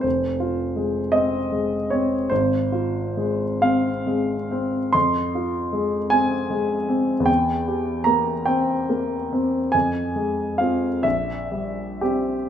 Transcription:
0.01 F1 C5
0.40 F4
0.76 G#3
1.12 C4 D#5
1.52 G#3
1.90 C4 C#5
2.29 G#1 C5
2.72 F4
3.17 G#3
3.62 C4 F5
4.07 G#3
4.51 C4
4.93 F2 C6
5.35 F4
5.73 G#3
6.10 C4 G#5
6.50 G#3
6.89 C4
7.20 E2
7.26 G5
7.68 G4
8.04 A#3 A#5
8.46 C4 G5
8.89 A#3
9.33 C4
9.72 F2 G#5
10.16 G#3
10.58 C4 F4 F5
11.03 A#1 E5
11.51 G3
12.01 C4 G4

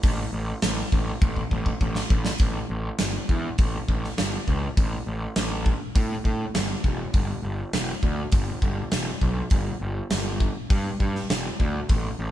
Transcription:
0.03 A1, kick, open hi-hat
0.33 A1
0.62 A1, snare, open hi-hat
0.92 A1, kick
1.22 A1, kick
1.36 kick
1.51 A1, kick
1.66 kick
1.81 A1, kick
1.95 snare
2.10 A1, kick
2.25 snare
2.38 A1, kick, open hi-hat
2.70 A1
2.98 G1, snare, open hi-hat
3.29 E2, kick
3.58 A1, kick, open hi-hat
3.88 A1, kick
4.04 snare
4.18 G1, snare, open hi-hat
4.48 C#2, kick
4.77 A1, kick, open hi-hat
5.07 A1
5.36 A1, snare, open hi-hat
5.66 kick
5.95 A2, kick, open hi-hat
6.25 A2, kick
6.55 G1, snare, open hi-hat
6.84 E1, kick
7.14 G1, kick, open hi-hat
7.43 G1
7.73 E1, snare, open hi-hat
8.03 D2, kick
8.32 G1, kick, open hi-hat
8.62 G1, kick
8.92 E1, snare, open hi-hat
9.21 B1, kick
9.50 G1, kick, open hi-hat
9.81 G1
10.10 G1, snare, open hi-hat
10.40 kick
10.70 G2, kick, open hi-hat
11.00 G2, kick
11.15 snare
11.30 E1, snare, open hi-hat
11.60 D2, kick
11.89 A1, kick, open hi-hat
12.19 A1

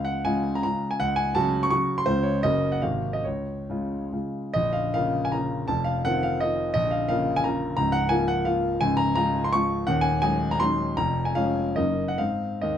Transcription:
Already playing: C#2 F5
0.05 F#5
0.25 C#3 G#3 F4 G#5
0.55 A#5
0.63 C#3 G#3 F4 A#5
0.91 G#5
1.00 C#2 F#5
1.16 G#5
1.35 C#3 F#3 F#4 A5
1.63 C#6
1.70 C#3 F#3 F#4 C#6
1.98 C6
2.06 C#2 C#3 G#3 F4 C5
2.23 C#5
2.43 F#1 C#3 A#3 F#4 D#5
2.72 F#5
2.82 G#1 C3 A#3 F#4 F5
3.13 D#5
3.24 C#2 C#5
3.70 C#3 G#3 F4
4.13 C#3 G#3 F4
4.54 A#0 A#1 D#5
4.73 F5
4.94 C#3 A#3 F4 F5
5.25 G#5
5.32 C#3 A#3 F4 A#5
5.68 F1 F2 A5
5.84 F5
6.05 D#3 C4 F4 F#5
6.23 F5
6.40 D#3 C4 F4 D#5
6.74 A#0 A#1 D#5
6.91 F5
7.08 C#3 A#3 F4 F5
7.36 G#5
7.44 C#3 A#3 F4 A#5
7.77 C#1 C#2 A#5
7.92 F#5
8.09 F3 A#3 F4 G#5
8.28 F#5
8.45 F3 A#3 F4 F5
8.81 C#1 C#2 G#5
8.97 A#5
9.15 F3 G#3 F4 A#5
9.44 C6
9.53 F3 G#3 F4 C#6
9.87 D#1 D#2 F#5
10.01 G#5
10.22 F#3 G#3 D#4 G#5
10.51 A#5
10.60 F#3 G#3 D#4 C6
10.97 F1 F2 A#5
11.25 G#5
11.35 F3 G#3 C#4 F5
11.76 F#1 F#2 A#3 D#4 D#5
12.08 F#5
12.18 G#2 C4 D#4 F5
12.62 D#2 D#5

